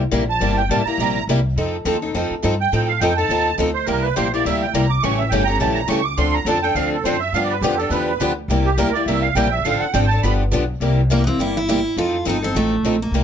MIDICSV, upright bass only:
0, 0, Header, 1, 3, 480
1, 0, Start_track
1, 0, Tempo, 289017
1, 678, Time_signature, 4, 2, 24, 8
1, 21984, End_track
2, 0, Start_track
2, 0, Title_t, "Upright bass"
2, 0, Program_c, 0, 32
2, 0, Note_on_c, 0, 36, 83
2, 184, Note_off_c, 0, 36, 0
2, 193, Note_on_c, 0, 34, 85
2, 661, Note_off_c, 0, 34, 0
2, 669, Note_on_c, 0, 31, 83
2, 1138, Note_off_c, 0, 31, 0
2, 1151, Note_on_c, 0, 33, 95
2, 1410, Note_off_c, 0, 33, 0
2, 1625, Note_on_c, 0, 34, 82
2, 2096, Note_off_c, 0, 34, 0
2, 2114, Note_on_c, 0, 36, 82
2, 2580, Note_off_c, 0, 36, 0
2, 2591, Note_on_c, 0, 41, 74
2, 3058, Note_off_c, 0, 41, 0
2, 3071, Note_on_c, 0, 39, 89
2, 3538, Note_off_c, 0, 39, 0
2, 3561, Note_on_c, 0, 41, 87
2, 3814, Note_off_c, 0, 41, 0
2, 4048, Note_on_c, 0, 43, 86
2, 4507, Note_off_c, 0, 43, 0
2, 4525, Note_on_c, 0, 45, 83
2, 4985, Note_off_c, 0, 45, 0
2, 4995, Note_on_c, 0, 41, 98
2, 5451, Note_off_c, 0, 41, 0
2, 5461, Note_on_c, 0, 39, 83
2, 5933, Note_off_c, 0, 39, 0
2, 5950, Note_on_c, 0, 38, 86
2, 6417, Note_off_c, 0, 38, 0
2, 6441, Note_on_c, 0, 36, 81
2, 6903, Note_off_c, 0, 36, 0
2, 6921, Note_on_c, 0, 34, 87
2, 7383, Note_off_c, 0, 34, 0
2, 7393, Note_on_c, 0, 38, 86
2, 7859, Note_off_c, 0, 38, 0
2, 7867, Note_on_c, 0, 36, 87
2, 8335, Note_off_c, 0, 36, 0
2, 8366, Note_on_c, 0, 33, 84
2, 8815, Note_off_c, 0, 33, 0
2, 8825, Note_on_c, 0, 31, 88
2, 9272, Note_off_c, 0, 31, 0
2, 9282, Note_on_c, 0, 34, 88
2, 9763, Note_off_c, 0, 34, 0
2, 9778, Note_on_c, 0, 37, 86
2, 10242, Note_off_c, 0, 37, 0
2, 10252, Note_on_c, 0, 38, 87
2, 10698, Note_off_c, 0, 38, 0
2, 10708, Note_on_c, 0, 41, 92
2, 11195, Note_off_c, 0, 41, 0
2, 11203, Note_on_c, 0, 38, 92
2, 11679, Note_off_c, 0, 38, 0
2, 11689, Note_on_c, 0, 42, 85
2, 12156, Note_off_c, 0, 42, 0
2, 12166, Note_on_c, 0, 43, 76
2, 12635, Note_off_c, 0, 43, 0
2, 12645, Note_on_c, 0, 41, 98
2, 13108, Note_off_c, 0, 41, 0
2, 13118, Note_on_c, 0, 40, 88
2, 13600, Note_off_c, 0, 40, 0
2, 13619, Note_on_c, 0, 38, 82
2, 14077, Note_off_c, 0, 38, 0
2, 14087, Note_on_c, 0, 36, 88
2, 14559, Note_off_c, 0, 36, 0
2, 14569, Note_on_c, 0, 38, 96
2, 15038, Note_off_c, 0, 38, 0
2, 15048, Note_on_c, 0, 36, 92
2, 15517, Note_off_c, 0, 36, 0
2, 15527, Note_on_c, 0, 34, 93
2, 16005, Note_off_c, 0, 34, 0
2, 16020, Note_on_c, 0, 33, 78
2, 16282, Note_off_c, 0, 33, 0
2, 16504, Note_on_c, 0, 32, 99
2, 16975, Note_off_c, 0, 32, 0
2, 17000, Note_on_c, 0, 31, 91
2, 17451, Note_off_c, 0, 31, 0
2, 17461, Note_on_c, 0, 35, 86
2, 17928, Note_off_c, 0, 35, 0
2, 17938, Note_on_c, 0, 36, 82
2, 18714, Note_off_c, 0, 36, 0
2, 18898, Note_on_c, 0, 31, 81
2, 19676, Note_off_c, 0, 31, 0
2, 19873, Note_on_c, 0, 41, 82
2, 20260, Note_off_c, 0, 41, 0
2, 20359, Note_on_c, 0, 31, 79
2, 20769, Note_off_c, 0, 31, 0
2, 20838, Note_on_c, 0, 33, 83
2, 21248, Note_off_c, 0, 33, 0
2, 21312, Note_on_c, 0, 34, 77
2, 21726, Note_off_c, 0, 34, 0
2, 21778, Note_on_c, 0, 36, 84
2, 21984, Note_off_c, 0, 36, 0
2, 21984, End_track
3, 0, Start_track
3, 0, Title_t, "Muted upright bass strokes"
3, 1418, Note_on_c, 9, 29, 40
3, 1584, Note_off_c, 9, 29, 0
3, 3828, Note_on_c, 9, 29, 40
3, 3994, Note_off_c, 9, 29, 0
3, 16303, Note_on_c, 9, 29, 40
3, 16469, Note_off_c, 9, 29, 0
3, 21984, End_track
0, 0, End_of_file